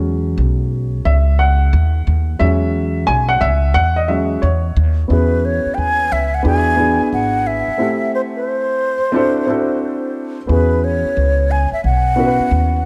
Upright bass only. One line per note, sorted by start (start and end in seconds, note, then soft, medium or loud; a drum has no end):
0.00 0.35 E2 loud
0.38 1.02 B1 medium
1.05 1.69 C#2 medium
1.73 2.05 D#2 loud
2.07 2.39 D#2 medium
2.40 3.04 E2 medium
3.08 3.40 B1 medium
3.41 3.73 C#2 loud
3.75 4.39 E2 medium
4.43 4.75 E2 medium
4.76 5.08 D#2 loud
5.10 5.63 E2 medium
5.66 muted upright bass stroke soft
5.78 6.09 D#2 medium
6.12 6.43 C#2 medium
6.45 6.97 E2 medium
7.00 muted upright bass stroke soft
7.13 7.65 G#1 medium
7.68 muted upright bass stroke soft
10.49 11.02 E2 medium
11.05 muted upright bass stroke soft
11.17 11.69 C#2 medium
11.72 muted upright bass stroke soft
11.84 12.37 B1 medium
12.39 muted upright bass stroke soft
12.51 12.85 D#2 medium